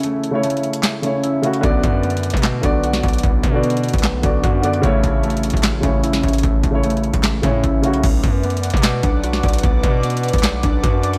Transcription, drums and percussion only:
0.03 closed hi-hat medium
0.24 closed hi-hat medium
0.43 closed hi-hat medium
0.50 closed hi-hat medium
0.57 closed hi-hat soft
0.63 closed hi-hat soft
0.73 closed hi-hat medium
0.83 snare loud
0.83 clap loud
0.83 closed hi-hat medium
1.03 closed hi-hat medium
1.24 closed hi-hat medium
1.43 closed hi-hat medium
1.53 closed hi-hat soft
1.63 kick loud
1.63 closed hi-hat medium
1.83 kick medium
1.83 closed hi-hat medium
2.03 closed hi-hat soft
2.10 closed hi-hat soft
2.17 closed hi-hat medium
2.23 closed hi-hat medium
2.23 open hi-hat medium
2.30 kick medium
2.30 closed hi-hat medium
2.37 closed hi-hat medium
2.43 snare loud
2.43 clap loud
2.43 closed hi-hat medium
2.63 kick medium
2.63 closed hi-hat medium
2.84 closed hi-hat medium
2.93 snare medium
3.03 kick loud
3.03 closed hi-hat soft
3.08 closed hi-hat medium
3.13 closed hi-hat medium
3.18 closed hi-hat medium
3.23 kick loud
3.23 closed hi-hat medium
3.43 kick medium
3.43 closed hi-hat medium
3.63 closed hi-hat medium
3.70 closed hi-hat medium
3.77 closed hi-hat medium
3.84 closed hi-hat soft
3.89 closed hi-hat medium
3.93 kick medium
3.93 closed hi-hat medium
3.98 closed hi-hat medium
4.03 snare loud
4.03 clap loud
4.03 closed hi-hat medium
4.23 kick loud
4.23 closed hi-hat medium
4.43 kick loud
4.43 closed hi-hat medium
4.63 closed hi-hat medium
4.73 closed hi-hat medium
4.83 kick loud
4.83 closed hi-hat medium
5.03 kick medium
5.03 closed hi-hat medium
5.23 closed hi-hat soft
5.30 closed hi-hat soft
5.37 closed hi-hat medium
5.43 closed hi-hat medium
5.43 open hi-hat medium
5.50 kick medium
5.50 closed hi-hat medium
5.57 closed hi-hat medium
5.63 snare loud
5.63 clap loud
5.63 closed hi-hat medium
5.83 kick medium
5.83 closed hi-hat medium
6.04 closed hi-hat medium
6.13 snare medium
6.23 kick loud
6.23 closed hi-hat soft
6.28 closed hi-hat medium
6.33 closed hi-hat medium
6.38 closed hi-hat medium
6.43 kick loud
6.43 closed hi-hat medium
6.63 kick medium
6.63 closed hi-hat medium
6.83 closed hi-hat medium
6.90 closed hi-hat medium
6.97 closed hi-hat soft
7.04 closed hi-hat soft
7.14 kick medium
7.14 closed hi-hat medium
7.23 snare loud
7.23 clap loud
7.23 closed hi-hat medium
7.43 kick medium
7.43 closed hi-hat medium
7.63 kick medium
7.63 closed hi-hat medium
7.84 closed hi-hat medium
7.93 closed hi-hat soft
8.04 kick loud
8.04 closed hi-hat medium
8.04 crash loud
8.23 kick medium
8.23 closed hi-hat medium
8.43 closed hi-hat soft
8.50 closed hi-hat soft
8.57 closed hi-hat medium
8.63 closed hi-hat medium
8.63 open hi-hat medium
8.70 kick medium
8.70 closed hi-hat medium
8.77 closed hi-hat medium
8.83 snare loud
8.83 clap loud
8.83 closed hi-hat medium
9.03 kick medium
9.03 closed hi-hat medium
9.24 closed hi-hat medium
9.33 snare medium
9.43 kick loud
9.43 closed hi-hat soft
9.48 closed hi-hat medium
9.53 closed hi-hat medium
9.58 closed hi-hat medium
9.63 kick loud
9.63 closed hi-hat medium
9.83 kick medium
9.83 closed hi-hat medium
10.03 closed hi-hat medium
10.10 closed hi-hat medium
10.17 closed hi-hat medium
10.23 closed hi-hat medium
10.28 closed hi-hat medium
10.33 kick medium
10.33 closed hi-hat medium
10.38 closed hi-hat medium
10.43 snare loud
10.43 clap loud
10.43 closed hi-hat medium
10.63 kick medium
10.63 closed hi-hat medium
10.83 kick loud
10.83 closed hi-hat medium
11.03 closed hi-hat medium
11.13 closed hi-hat soft

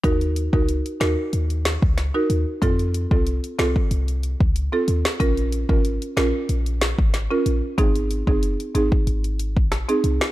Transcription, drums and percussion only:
0.04 kick loud
0.04 closed hi-hat medium
0.21 closed hi-hat medium
0.36 closed hi-hat medium
0.53 kick loud
0.69 closed hi-hat medium
0.86 closed hi-hat medium
1.01 snare loud
1.01 closed hi-hat medium
1.33 closed hi-hat medium
1.50 closed hi-hat medium
1.65 snare loud
1.65 closed hi-hat medium
1.82 kick loud
1.98 snare medium
1.98 closed hi-hat medium
2.30 closed hi-hat medium
2.62 kick loud
2.62 closed hi-hat medium
2.79 closed hi-hat medium
2.94 closed hi-hat medium
3.11 kick loud
3.27 closed hi-hat medium
3.44 closed hi-hat medium
3.59 snare loud
3.59 closed hi-hat medium
3.76 kick loud
3.91 closed hi-hat medium
4.08 closed hi-hat medium
4.23 closed hi-hat medium
4.40 kick loud
4.56 closed hi-hat medium
4.88 closed hi-hat medium
5.05 snare loud
5.20 kick loud
5.20 closed hi-hat medium
5.37 closed hi-hat soft
5.52 closed hi-hat medium
5.69 kick loud
5.85 closed hi-hat medium
6.02 closed hi-hat medium
6.17 snare loud
6.17 closed hi-hat medium
6.49 closed hi-hat medium
6.66 closed hi-hat medium
6.81 snare loud
6.81 closed hi-hat medium
6.99 kick loud
7.14 snare medium
7.14 closed hi-hat medium
7.46 closed hi-hat medium
7.78 kick loud
7.78 closed hi-hat medium
7.95 closed hi-hat medium
8.11 closed hi-hat medium
8.27 kick medium
8.43 closed hi-hat medium
8.60 closed hi-hat medium
8.75 closed hi-hat medium
8.92 kick loud
9.07 closed hi-hat medium
9.24 closed hi-hat medium
9.39 closed hi-hat medium
9.57 kick loud
9.72 cross-stick medium
9.72 snare medium
9.72 closed hi-hat medium
9.89 closed hi-hat medium
10.04 closed hi-hat medium
10.21 snare loud

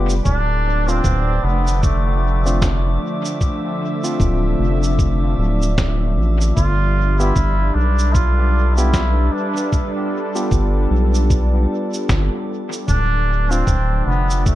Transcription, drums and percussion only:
0.09 shaker medium
0.25 kick medium
0.25 shaker soft
0.88 shaker soft
1.04 kick loud
1.04 shaker soft
1.67 shaker soft
1.83 kick loud
1.83 shaker soft
2.46 shaker soft
2.62 kick medium
2.62 snare medium
2.62 shaker soft
3.25 shaker soft
3.41 kick medium
3.41 shaker soft
4.04 shaker soft
4.20 kick loud
4.20 shaker soft
4.83 shaker soft
4.99 kick loud
4.99 shaker soft
5.62 shaker soft
5.78 kick medium
5.78 snare medium
5.78 shaker soft
6.41 shaker soft
6.57 kick medium
6.57 shaker soft
7.20 shaker soft
7.36 kick medium
7.36 shaker soft
7.99 shaker soft
8.15 kick medium
8.15 shaker soft
8.78 shaker soft
8.94 kick medium
8.94 snare medium
8.94 shaker soft
9.57 shaker soft
9.72 kick medium
9.72 shaker soft
10.36 shaker soft
10.51 kick medium
10.51 shaker soft
11.14 shaker medium
11.30 kick loud
11.30 shaker soft
11.94 shaker soft
12.09 kick medium
12.09 snare medium
12.09 shaker soft
12.72 shaker medium
12.88 kick medium
12.88 shaker soft
13.51 shaker medium
13.67 kick loud
13.67 shaker soft
14.30 shaker medium
14.46 kick loud
14.46 shaker soft

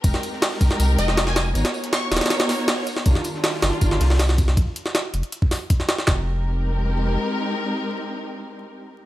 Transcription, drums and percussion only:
0.04 kick loud
0.04 closed hi-hat medium
0.04 tambourine medium
0.14 snare soft
0.14 closed hi-hat soft
0.23 closed hi-hat medium
0.23 tambourine medium
0.33 snare soft
0.42 snare loud
0.42 closed hi-hat medium
0.42 open hi-hat medium
0.52 snare medium
0.61 kick medium
0.61 closed hi-hat medium
0.61 tambourine medium
0.71 snare medium
0.71 closed hi-hat soft
0.80 closed hi-hat medium
0.80 tambourine medium
0.98 closed hi-hat medium
0.98 tambourine medium
1.08 snare soft
1.17 snare loud
1.17 closed hi-hat medium
1.17 tambourine medium
1.27 snare medium
1.36 snare loud
1.36 closed hi-hat medium
1.36 tambourine medium
1.55 closed hi-hat medium
1.55 tambourine medium
1.65 snare loud
1.65 closed hi-hat medium
1.74 tambourine medium
1.84 snare soft
1.84 closed hi-hat medium
1.93 snare loud
1.93 closed hi-hat medium
1.93 tambourine medium
2.12 snare medium
2.12 closed hi-hat medium
2.12 tambourine medium
2.17 snare medium
2.17 closed hi-hat medium
2.21 snare soft
2.21 snare medium
2.21 closed hi-hat medium
2.26 snare medium
2.26 closed hi-hat medium
2.30 snare loud
2.30 closed hi-hat medium
2.30 tambourine medium
2.39 snare loud
2.39 closed hi-hat soft
2.39 closed hi-hat medium
2.49 snare medium
2.49 open hi-hat medium
2.49 tambourine medium
2.59 snare soft
2.68 snare loud
2.68 closed hi-hat medium
2.68 open hi-hat medium
2.78 snare medium
2.87 closed hi-hat medium
2.87 tambourine medium
2.96 snare medium
3.06 kick loud
3.06 closed hi-hat medium
3.06 tambourine medium
3.15 snare soft
3.15 closed hi-hat soft
3.24 closed hi-hat medium
3.24 tambourine medium
3.34 snare soft
3.44 snare loud
3.44 closed hi-hat medium
3.44 open hi-hat medium
3.54 snare medium
3.62 snare loud
3.62 closed hi-hat medium
3.62 tambourine medium
3.73 closed hi-hat soft
3.81 kick medium
3.81 closed hi-hat medium
3.81 tambourine medium
3.91 snare soft
4.00 snare loud
4.00 closed hi-hat medium
4.00 open hi-hat medium
4.10 snare medium
4.10 snare soft
4.10 open hi-hat medium
4.14 snare medium
4.14 open hi-hat medium
4.19 snare loud
4.19 closed hi-hat medium
4.19 tambourine loud
4.29 snare medium
4.38 kick loud
4.38 closed hi-hat medium
4.38 tambourine medium
4.48 snare soft
4.57 kick loud
4.57 closed hi-hat medium
4.76 closed hi-hat medium
4.86 snare medium
4.95 snare loud
4.95 closed hi-hat medium
5.14 closed hi-hat medium
5.23 closed hi-hat soft
5.32 closed hi-hat medium
5.42 kick loud
5.51 snare medium
5.51 open hi-hat medium
5.70 kick loud
5.70 closed hi-hat medium
5.80 snare soft
5.89 snare loud
5.89 closed hi-hat medium
5.99 snare medium
6.07 kick loud
6.07 snare loud
6.07 clap medium

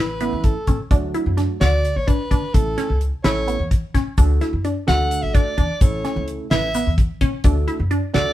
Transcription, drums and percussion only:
0.21 closed hi-hat medium
0.44 kick loud
0.44 closed hi-hat medium
0.67 kick medium
0.67 closed hi-hat medium
0.91 kick loud
0.91 closed hi-hat medium
1.14 closed hi-hat soft
1.38 snare soft
1.38 closed hi-hat medium
1.61 snare medium
1.61 closed hi-hat medium
1.85 closed hi-hat medium
2.08 kick loud
2.08 closed hi-hat medium
2.31 kick medium
2.31 closed hi-hat medium
2.54 kick loud
2.54 closed hi-hat medium
2.78 snare soft
2.78 closed hi-hat medium
3.01 closed hi-hat soft
3.24 snare medium
3.24 closed hi-hat medium
3.48 closed hi-hat medium
3.71 kick medium
3.71 closed hi-hat medium
3.94 kick medium
3.94 snare soft
3.94 closed hi-hat medium
4.18 kick loud
4.18 closed hi-hat medium
4.18 shaker medium
4.41 snare soft
4.41 closed hi-hat soft
4.65 closed hi-hat medium
4.88 snare medium
4.88 closed hi-hat medium
5.11 closed hi-hat medium
5.11 shaker medium
5.35 kick loud
5.35 closed hi-hat medium
5.58 kick medium
5.58 closed hi-hat medium
5.81 kick loud
5.81 closed hi-hat medium
5.81 shaker medium
6.05 snare soft
6.05 closed hi-hat medium
6.28 closed hi-hat medium
6.51 snare medium
6.51 closed hi-hat medium
6.74 snare soft
6.74 closed hi-hat medium
6.74 shaker medium
6.98 kick loud
6.98 closed hi-hat medium
7.21 kick medium
7.21 closed hi-hat medium
7.44 kick loud
7.44 closed hi-hat medium
7.44 shaker medium
7.68 closed hi-hat medium
7.91 closed hi-hat medium
8.14 snare medium
8.14 closed hi-hat medium

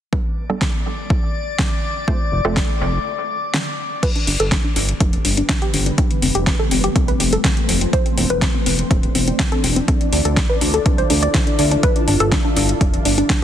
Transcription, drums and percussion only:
0.13 kick loud
0.61 kick loud
0.61 snare loud
1.10 kick loud
1.59 kick loud
1.59 snare loud
2.08 kick loud
2.57 kick loud
2.57 snare loud
3.54 snare loud
4.03 kick loud
4.03 closed hi-hat medium
4.03 crash medium
4.16 closed hi-hat soft
4.27 open hi-hat loud
4.40 closed hi-hat medium
4.52 kick loud
4.52 snare loud
4.52 closed hi-hat medium
4.76 open hi-hat loud
4.89 closed hi-hat medium
5.00 kick loud
5.00 closed hi-hat medium
5.13 closed hi-hat soft
5.25 open hi-hat loud
5.37 closed hi-hat medium
5.49 kick loud
5.49 snare loud
5.49 closed hi-hat medium
5.62 closed hi-hat soft
5.74 open hi-hat loud
5.86 closed hi-hat medium
5.98 kick loud
5.98 closed hi-hat medium
6.11 closed hi-hat soft
6.22 open hi-hat loud
6.35 closed hi-hat soft
6.47 kick loud
6.47 snare loud
6.47 closed hi-hat medium
6.71 open hi-hat loud
6.84 closed hi-hat soft
6.96 kick loud
6.96 closed hi-hat medium
7.08 closed hi-hat soft
7.20 open hi-hat loud
7.33 closed hi-hat soft
7.44 kick loud
7.44 snare loud
7.44 closed hi-hat medium
7.57 closed hi-hat soft
7.69 open hi-hat loud
7.81 closed hi-hat medium
7.93 kick loud
7.93 closed hi-hat medium
8.06 closed hi-hat soft
8.18 open hi-hat loud
8.30 closed hi-hat soft
8.42 kick loud
8.42 snare loud
8.42 closed hi-hat medium
8.66 open hi-hat loud
8.79 closed hi-hat soft
8.91 kick loud
8.91 closed hi-hat medium
9.03 closed hi-hat soft
9.15 open hi-hat loud
9.28 closed hi-hat soft
9.39 kick loud
9.39 snare loud
9.39 closed hi-hat medium
9.52 closed hi-hat soft
9.64 open hi-hat loud
9.76 closed hi-hat soft
9.88 kick loud
9.88 closed hi-hat medium
10.01 closed hi-hat soft
10.13 open hi-hat loud
10.25 closed hi-hat soft
10.37 kick loud
10.37 snare loud
10.37 closed hi-hat medium
10.61 open hi-hat loud
10.74 closed hi-hat soft
10.86 kick loud
10.86 closed hi-hat medium
10.98 closed hi-hat soft
11.10 open hi-hat loud
11.23 closed hi-hat soft
11.34 kick loud
11.34 snare loud
11.34 closed hi-hat medium
11.47 closed hi-hat soft
11.59 open hi-hat loud
11.71 closed hi-hat soft
11.83 kick loud
11.83 closed hi-hat medium
11.96 closed hi-hat soft
12.08 open hi-hat loud
12.20 closed hi-hat soft
12.32 kick loud
12.32 snare loud
12.32 closed hi-hat medium
12.57 open hi-hat loud
12.69 closed hi-hat soft
12.81 kick loud
12.81 closed hi-hat medium
12.94 closed hi-hat soft
13.05 open hi-hat loud
13.18 closed hi-hat soft
13.30 kick loud
13.30 snare loud
13.30 closed hi-hat medium

